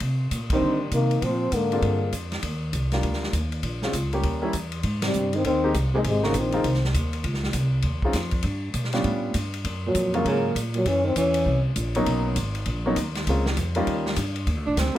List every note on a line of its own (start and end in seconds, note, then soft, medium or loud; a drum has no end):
0.00 0.30 C3 medium
0.00 kick soft
0.00 ride medium
0.31 0.61 A#2 medium
0.31 kick soft
0.31 hi-hat pedal soft
0.31 ride medium
0.50 0.80 D#3 medium
0.50 0.91 G3 medium
0.50 0.91 A#3 medium
0.50 0.91 D4 medium
0.50 0.91 D#4 medium
0.50 kick medium
0.50 ride medium
0.54 0.80 C4 loud
0.61 0.91 D3 medium
0.91 1.21 C3 medium
0.91 1.24 D#3 medium
0.91 1.25 A#3 medium
0.91 kick soft
0.91 hi-hat pedal medium
0.91 ride medium
1.11 ride soft
1.22 1.51 A#2 medium
1.22 1.55 F3 medium
1.22 1.57 C4 medium
1.22 kick soft
1.22 ride medium
1.52 1.82 G#2 medium
1.52 2.13 D3 medium
1.52 2.14 A#3 medium
1.52 kick soft
1.52 hi-hat pedal soft
1.52 ride medium
1.72 2.11 G#3 medium
1.72 2.11 C4 medium
1.72 2.11 D4 medium
1.72 2.11 F4 medium
1.72 ride soft
1.82 2.12 G2 medium
1.82 kick soft
1.82 ride medium
2.12 2.42 F2 medium
2.12 kick soft
2.12 hi-hat pedal medium
2.12 ride medium
2.32 snare soft
2.32 ride soft
2.43 2.72 D#2 medium
2.43 kick soft
2.43 ride medium
2.73 3.02 C2 medium
2.73 kick soft
2.73 hi-hat pedal soft
2.73 ride medium
2.92 3.32 G3 medium
2.92 3.32 A#3 soft
2.92 3.32 D4 medium
2.92 3.32 F4 medium
2.92 snare soft
2.92 ride soft
3.03 3.32 D2 medium
3.03 kick soft
3.03 ride medium
3.13 snare soft
3.23 snare soft
3.33 3.62 D#2 medium
3.33 kick soft
3.33 hi-hat pedal medium
3.33 ride medium
3.52 ride soft
3.63 3.92 A#1 medium
3.63 kick soft
3.63 ride medium
3.82 3.93 G#3 medium
3.82 3.93 C4 medium
3.82 3.93 C#4 medium
3.82 3.93 F4 medium
3.82 snare soft
3.93 4.23 C#2 medium
3.93 kick soft
3.93 hi-hat pedal medium
3.93 ride medium
4.13 4.40 G3 medium
4.13 4.41 A#3 medium
4.13 4.41 C#4 medium
4.13 4.41 G4 medium
4.13 ride soft
4.23 4.53 D#2 medium
4.23 kick soft
4.23 ride medium
4.42 4.52 G3 medium
4.42 4.52 A#3 medium
4.42 4.53 C#4 medium
4.42 4.53 E4 medium
4.53 4.83 E2 medium
4.53 kick soft
4.53 hi-hat pedal soft
4.53 ride medium
4.72 ride soft
4.83 5.13 G#2 medium
4.83 kick soft
4.83 ride medium
5.02 5.35 C3 medium
5.02 5.37 G3 medium
5.02 snare medium
5.02 ride medium
5.13 5.43 G2 medium
5.13 hi-hat pedal medium
5.33 5.45 D#3 medium
5.33 5.46 C4 medium
5.33 ride soft
5.44 5.73 D#2 medium
5.44 5.73 D#3 medium
5.44 5.74 C4 loud
5.44 kick soft
5.44 ride medium
5.64 5.74 G#3 medium
5.64 5.74 A#3 medium
5.64 5.74 C4 medium
5.64 5.74 D#4 medium
5.64 5.74 G4 medium
5.74 6.03 C2 medium
5.74 kick soft
5.74 hi-hat pedal medium
5.74 ride medium
5.94 5.99 C3 medium
5.94 6.04 G#3 medium
5.94 6.01 G#3 medium
5.94 6.04 A#3 medium
5.94 6.04 C4 medium
5.94 6.04 D#4 medium
5.94 6.04 G#4 medium
6.04 6.34 G#1 medium
6.04 6.27 C3 medium
6.04 6.28 G#3 medium
6.04 kick soft
6.04 ride medium
6.23 6.39 C#3 medium
6.23 6.33 G#3 medium
6.23 6.33 A#3 medium
6.23 6.33 C4 medium
6.23 6.34 D#4 medium
6.23 6.34 F#4 medium
6.23 snare soft
6.27 6.41 A#3 medium
6.34 6.63 A#1 medium
6.34 6.85 D#3 medium
6.34 kick soft
6.34 hi-hat pedal medium
6.34 ride medium
6.39 6.86 C4 medium
6.52 6.64 G#3 medium
6.52 6.64 A#3 medium
6.52 6.64 C4 medium
6.52 6.64 D#4 medium
6.52 6.64 F4 medium
6.52 ride soft
6.64 6.94 C2 medium
6.64 kick soft
6.64 ride medium
6.74 snare soft
6.84 snare soft
6.94 7.23 D#2 medium
6.94 kick soft
6.94 hi-hat pedal medium
6.94 ride medium
7.13 ride soft
7.24 7.53 C#2 medium
7.24 kick soft
7.24 ride medium
7.34 snare soft
7.44 snare soft
7.53 7.83 C2 medium
7.53 kick soft
7.53 hi-hat pedal medium
7.53 ride medium
7.82 8.13 D#2 medium
7.82 kick soft
7.82 ride medium
8.02 8.14 G#3 medium
8.02 8.14 C4 medium
8.02 8.15 C#4 medium
8.02 8.14 D#4 medium
8.02 8.15 F4 medium
8.02 kick medium
8.13 8.43 F2 medium
8.13 kick soft
8.13 snare soft
8.13 hi-hat pedal medium
8.13 ride medium
8.31 kick medium
8.31 ride soft
8.42 8.73 G2 medium
8.42 kick soft
8.42 ride medium
8.74 9.04 B2 medium
8.74 kick soft
8.74 hi-hat pedal medium
8.74 ride medium
8.84 snare soft
8.93 9.33 G3 medium
8.93 9.33 B3 medium
8.93 9.33 C#4 medium
8.93 9.33 D4 medium
8.93 9.33 F4 medium
8.93 snare soft
8.93 ride soft
9.04 9.34 A2 medium
9.04 kick soft
9.04 ride medium
9.34 9.64 G2 medium
9.34 kick soft
9.34 hi-hat pedal medium
9.34 ride medium
9.54 ride soft
9.64 9.94 F#2 medium
9.64 kick soft
9.64 ride medium
9.86 10.17 A#2 medium
9.86 10.18 F#3 medium
9.95 10.24 F2 medium
9.95 kick soft
9.95 hi-hat pedal medium
9.95 ride medium
10.14 10.26 C#3 medium
10.14 10.53 F#3 medium
10.14 10.54 G#3 medium
10.14 10.54 A#3 medium
10.14 10.27 A#3 medium
10.14 10.54 C#4 medium
10.14 10.54 F4 medium
10.14 ride soft
10.25 10.55 G#2 medium
10.25 10.54 C#3 medium
10.25 kick soft
10.25 ride medium
10.29 10.56 A#3 medium
10.55 10.85 A#2 medium
10.55 kick soft
10.55 hi-hat pedal medium
10.55 ride medium
10.74 10.87 A#2 medium
10.74 10.89 F#3 medium
10.74 ride soft
10.85 11.15 F#2 medium
10.85 11.03 E3 medium
10.85 11.05 C#4 loud
10.85 kick soft
10.85 ride medium
11.04 11.15 D#3 medium
11.04 11.16 C4 medium
11.16 11.45 E2 medium
11.16 11.61 E3 medium
11.16 11.63 C#4 medium
11.16 kick soft
11.16 hi-hat pedal medium
11.16 ride medium
11.34 ride medium
11.46 11.75 C2 medium
11.46 kick soft
11.76 12.05 A#1 medium
11.76 kick soft
11.76 hi-hat pedal medium
11.76 ride medium
11.95 12.35 F#3 medium
11.95 12.35 A#3 medium
11.95 12.35 B3 medium
11.95 12.35 C#4 medium
11.95 12.35 D#4 medium
11.95 ride medium
12.06 12.36 B1 medium
12.06 kick soft
12.06 ride medium
12.36 12.65 G#1 medium
12.36 kick soft
12.36 hi-hat pedal soft
12.36 ride medium
12.55 ride soft
12.66 12.96 A#1 medium
12.66 kick soft
12.66 ride medium
12.86 12.96 F#3 medium
12.86 12.96 A#3 medium
12.86 12.96 B3 medium
12.86 12.96 C#4 medium
12.86 12.96 D#4 medium
12.96 13.26 D#2 medium
12.96 kick soft
12.96 hi-hat pedal medium
12.96 ride medium
13.15 snare soft
13.15 ride soft
13.27 13.56 C#2 medium
13.27 13.45 G#3 medium
13.27 13.45 A#3 medium
13.27 13.45 C4 medium
13.27 13.45 C#4 medium
13.27 13.45 F4 medium
13.27 kick soft
13.27 ride medium
13.46 snare medium
13.57 13.86 F2 medium
13.57 kick soft
13.57 hi-hat pedal medium
13.57 ride medium
13.75 14.15 G3 medium
13.75 14.15 A#3 medium
13.75 14.15 C#4 medium
13.75 14.16 D#4 medium
13.75 14.15 F4 medium
13.75 ride soft
13.87 14.16 D#2 medium
13.87 kick soft
13.87 ride medium
14.06 snare medium
14.16 14.46 G2 medium
14.16 kick soft
14.16 hi-hat pedal medium
14.16 ride medium
14.36 ride soft
14.47 14.57 D#2 medium
14.47 kick soft
14.47 ride medium
14.57 14.66 D2 medium
14.66 14.76 A#1 medium
14.66 14.80 D4 medium
14.76 14.94 D2 medium
14.76 14.98 C4 medium
14.76 kick soft
14.76 snare medium
14.76 hi-hat pedal medium
14.76 ride medium